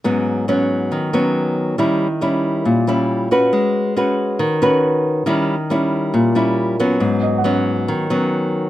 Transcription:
<<
  \new Staff \with { instrumentName = "Grand piano" } { \time 4/4 \key gis \minor \tempo 4 = 138 r1 | r1 | r1 | r1 |
r8 dis''16 fis''4~ fis''16 r2 | }
  \new Staff \with { instrumentName = "Nylon-string guitar" } { \time 4/4 \key gis \minor << { <fis b cis'>4 <fis b cis'>4. <fis b cis'>4. | <g cis' e'>8 r8 <g cis' e'>4. <g cis' e'>4 <cis' fis' b'>8~ | <cis' fis' b'>4 <cis' fis' b'>4. <cis' fis' b'>4. | <g cis' e'>8 r8 <g cis' e'>4. <g cis' e'>4 <fis b cis'>8~ |
<fis b cis'>4 <fis b cis'>4. <fis b cis'>4. | } \\ { gis,2 dis2 | dis2 ais,2 | gis2 dis2 | dis2 ais,2 |
gis,2 dis2 | } >> }
>>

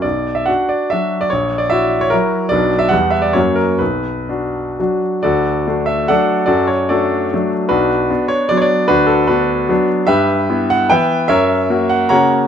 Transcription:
<<
  \new Staff \with { instrumentName = "Grand piano" } { \time 3/4 \key b \minor \tempo 4 = 147 d''8. e''16 fis''8 d''8 e''8. d''16 | cis''8. d''16 e''8. cis''16 ais'4 | d''8. e''16 fis''8 e''16 d''16 cis''8 ais'8 | b'2~ b'8 r8 |
\key d \major <fis' a' d''>4. e''8 <a' d'' fis''>4 | <fis' a' d''>8 cis''8 <fis' a' d''>4. r8 | <d' fis' b'>4. cis''8 \tuplet 3/2 { d''16 cis''16 d''4 } | <d' fis' b'>8 a'8 <d' fis' b'>4. r8 |
\key e \dorian <g' b' e''>4. fis''8 <b' e'' g''>4 | <ais' cis'' e''>4. fis''8 <cis'' fis'' ais''>4 | }
  \new Staff \with { instrumentName = "Grand piano" } { \time 3/4 \key b \minor b,,4 <d' fis'>4 <fis d' fis'>4 | ais,,4 <e' fis'>4 <fis e' fis'>4 | <b,, fis d' b'>4 <e, g b b'>4 <fis, fis ais fis'>4 | b,,4 <d' fis'>4 <fis d' fis'>4 |
\key d \major d,4 <a d'>4 <fis a d'>4 | fis,4 <a d'>4 <fis a d'>4 | b,,4 <b d'>4 <fis b d'>4 | d,4 b4 <fis b d'>4 |
\key e \dorian g,4 <b e'>4 <e b e'>4 | fis,4 <ais fis'>4 <cis ais fis'>4 | }
>>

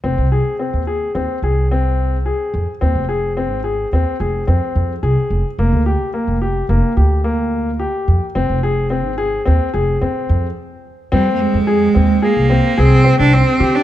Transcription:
<<
  \new Staff \with { instrumentName = "Grand piano" } { \time 5/4 \key f \dorian \tempo 4 = 108 c'8 aes'8 c'8 aes'8 c'8 aes'8 c'4 aes'4 | c'8 aes'8 c'8 aes'8 c'8 aes'8 c'4 aes'4 | bes8 g'8 bes8 g'8 bes8 g'8 bes4 g'4 | c'8 aes'8 c'8 aes'8 c'8 aes'8 c'4 r4 |
c'4 aes'8 c'8 aes'8 c'8 aes'8 c'4 g'8 | }
  \new Staff \with { instrumentName = "Cello" } { \time 5/4 \key f \dorian r1 r4 | r1 r4 | r1 r4 | r1 r4 |
g16. bes32 aes4. bes4 c'8. d'16 c'8. d'16 | }
  \new Staff \with { instrumentName = "Upright bass" } { \clef bass \time 5/4 \key f \dorian f,,16 c,8 r8 ees,8. ees,16 r16 c,2 f,16 r16 | ees,16 f,,4 aes,,8. ees,16 r16 f,,8 f,16 r16 f,8 c,16 r16 f,,16 r16 | f,,16 d,8 r8 f,,8. f,,16 r16 d,2 f,16 r16 | f,,16 f,,4 aes,,8. ees,16 r16 f,,8 f,16 r16 f,8 r4 |
f,8. f,8. ees,8 r16 c,8 r16 c,8. c,8 r16 d16 r16 | }
>>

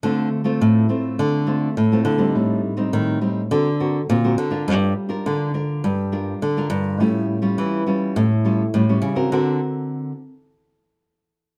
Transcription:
<<
  \new Staff \with { instrumentName = "Nylon-string guitar" } { \time 4/4 \key d \minor \tempo 4 = 103 << { d4 a,4 d4 a,4 | a,4 a,4 d4 d4 | g4 d4 g4 d4 | a,4 e4 a,4 e4 |
<d c' fis' ais'>8 r2. r8 | } \\ { <a c' f'>8. <a c' f'>8. <a c' f'>4 <a c' f'>8 r16 <a c' f'>8 <g c' ees'>16~ | <g c' ees'>8. <g c' ees'>8. <g c' ees'>16 r16 <c' fis' ais'>16 r16 <c' fis' ais'>16 r16 <c' fis' ais'>16 <c' fis' ais'>8 <d' eis' ais'>16~ | <d' eis' ais'>8. <d' f' bes'>8. <d' f' bes'>8. r16 <d' f' bes'>8 r16 <d' f' bes'>8. | <g cis' f'>8. <g cis' f'>8. <g cis' f'>8. r16 <g cis' f'>16 r16 <g cis' f'>16 <g cis' f'>8 <c' fis' bes'>16~ |
<c' fis' bes'>8. r2. r16 | } >> }
  \new Staff \with { instrumentName = "Nylon-string guitar" } { \clef bass \time 4/4 \key d \minor d8 r8 a,8 r8 d4 a,8 d8 | a,8 r8 ees8 r8 d4 ais,8 d8 | g,8 r8 d8 r8 g,4 d8 g,8 | a,8 r8 e8 r8 a,4 a,8 cis8 |
d8 r2. r8 | }
>>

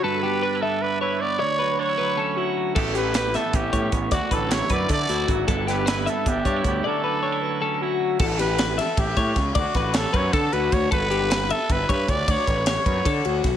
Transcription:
<<
  \new Staff \with { instrumentName = "Clean electric guitar" } { \time 7/8 \key d \major \tempo 4 = 154 a'8 g'8 b'8 e''4 cis''4 | d''8 b'8 cis''8 b'8 a'8 fis'4 | a'8 g'8 b'8 e''4 cis''4 | d''8 b'8 cis''8 b'8 a'8 fis'4 |
a'8 g'8 b'8 e''4 cis''4 | d''8 b'8 cis''8 b'8 a'8 fis'4 | a'8 g'8 b'8 e''4 cis''4 | d''8 b'8 cis''8 b'8 a'8 fis'4 |
a'8 g'8 b'8 e''4 cis''4 | d''8 b'8 cis''8 b'8 a'8 fis'4 | }
  \new Staff \with { instrumentName = "Trumpet" } { \time 7/8 \key d \major b'4. a'8 b'8 b'8 d''8 | cis''4 cis''2 r8 | r8 b'4 a'8 g'4 r8 | fis'8 a'8 cis''8 d''8 d''4 r8 |
r8 b'4 a'8 g'4 g'8 | a'2~ a'8 r4 | r8 b'4 a'8 g'4 r8 | fis'8 fis'8 a'8 cis''8 a'8 b'8 cis''8 |
b'4. a'8 b'8 b'8 d''8 | cis''4 cis''2 r8 | }
  \new Staff \with { instrumentName = "Clean electric guitar" } { \time 7/8 \key d \major << { d8 b8 d'16 e'16 b8 d'8 e'8 b8 | r8 fis8 d'16 e'16 fis8 cis'8 e'8 fis8 | <e b cis' g'>8 b8 g'8 b8 cis'8 cis'8 b8 | r8 fis8 e'8 fis8 a8 e'8 fis8 |
<d b d' e'>8 b8 e'8 b8 d'8 d'16 e'16 b8 | <d fis cis' e'>8 fis8 d'16 e'16 fis8 cis'8 e'8 fis8 | r2. r8 | r2. r8 |
r2. r8 | r2. r8 | } \\ { g,2.~ g,8 | d,2.~ d,8 | a,2.~ a,8 | d,2.~ d,8 |
g,2.~ g,8 | d,2.~ d,8 | r2. r8 | r2. r8 |
r2. r8 | r2. r8 | } >> }
  \new Staff \with { instrumentName = "Picked electric bass" } { \clef bass \time 7/8 \key d \major r2. r8 | r2. r8 | a,,2 a,,8 a,8 a,,8 | d,16 r16 a,,4 fis,8 d8 d,8 gis,,8 |
g,,2 g,,8 g,8 d,8 | r2. r8 | a,,2 a,,8 a,8 cis,8 | d,16 r16 a,,4 fis,8 d8 d,8 d,8 |
g,,2 g,,8 g,8 d,8 | d,16 r16 a,,4 fis,8 d8 d,8 b,,8 | }
  \new DrumStaff \with { instrumentName = "Drums" } \drummode { \time 7/8 r4 r4 r4. | r4 r4 r4. | <cymc bd>8 hh8 <hh sn>8 <hh sn>8 <hh bd>8 <hh bd>8 <hh bd>8 | <hh bd>8 <hh bd>8 <hh sn>8 <hh bd>8 <hh bd>8 hh8 <hh bd>8 |
<hh bd>8 <hh sn>8 <hh sn>8 hh8 <hh bd>8 <hh bd>8 <hh bd>8 | r4 r4 r4. | <cymc bd>8 <cymr sn>8 <cymr sn>8 <cymr sn>8 <bd cymr>8 <bd cymr sn>8 <bd cymr sn>8 | <bd cymr>8 <bd cymr sn>8 <cymr sn>8 <bd cymr>8 <bd cymr sn>8 cymr8 <bd cymr>8 |
<bd cymr>8 cymr8 <cymr sn>8 cymr8 <bd cymr>8 <bd cymr>8 <bd cymr>8 | <bd cymr>8 <bd cymr>8 <cymr sn>8 <bd cymr>8 <bd cymr>8 cymr8 <bd cymr sn>8 | }
>>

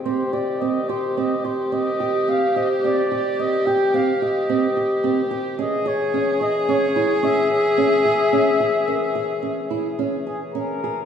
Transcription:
<<
  \new Staff \with { instrumentName = "Flugelhorn" } { \time 5/4 \key c \minor \tempo 4 = 109 c''8 d''8 ees''8 c''8 ees''8 c''8 ees''4 f''8 ees''8 | d''4 ees''8 g''8 f''8 ees''2 r8 | ees''8 des''4 ees''8 des''4 fes''2~ | fes''2.~ fes''8 aes'8 bes'4 | }
  \new Staff \with { instrumentName = "Celesta" } { \time 5/4 \key c \minor r1 r8 c''8~ | c''4 r1 | r1 r8 aes'8~ | aes'4 bes'4. r2 r8 | }
  \new Staff \with { instrumentName = "Viola" } { \time 5/4 \key c \minor g'1~ g'4~ | g'1~ g'4 | aes'1~ aes'4~ | aes'1~ aes'8 r8 | }
  \new Staff \with { instrumentName = "Nylon-string guitar" } { \time 5/4 \key c \minor c'8 g'8 c'8 g'8 c'8 g'8 c'8 g'8 c'8 g'8 | c'8 g'8 c'8 g'8 c'8 g'8 c'8 g'8 c'8 g'8 | des'8 aes'8 des'8 aes'8 des'8 fes'8 des'8 aes'8 des'8 aes'8 | des'8 aes'8 des'8 aes'8 des'8 fes'8 des'8 aes'8 des'8 aes'8 | }
  \new Staff \with { instrumentName = "Harmonium" } { \time 5/4 \key c \minor <ees c' g'>1~ <ees c' g'>4~ | <ees c' g'>1~ <ees c' g'>4 | <fes des' aes'>1~ <fes des' aes'>4~ | <fes des' aes'>1~ <fes des' aes'>4 | }
>>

